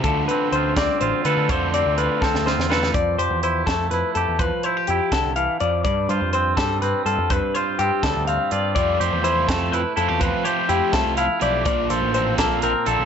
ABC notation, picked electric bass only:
X:1
M:6/8
L:1/16
Q:3/8=83
K:Flyd
V:1 name="Picked electric bass" clef=bass
D,,2 z2 D,,2 D,, z A,,, z D, D, | F,,3 D,,2 z2 D,,2 E,,3 | F,,2 F,, E,,3 F,,2 F,, z F,, E,,- | E,, z3 F,, z C,, C,,2 z F,,2 |
G,,2 G,, F,,3 G,,2 G,, z G,, F,,- | F,, z3 G,, z D,, D,,2 z G,,2 | F,,2 F,, E,,3 F,,2 F,, z F,, E,,- | E,, z3 F,, z C,, C,,2 z B,,,2 |
_B,,,2 B,,, A,,,3 B,,,2 B,,, z B,,, =B,,, |]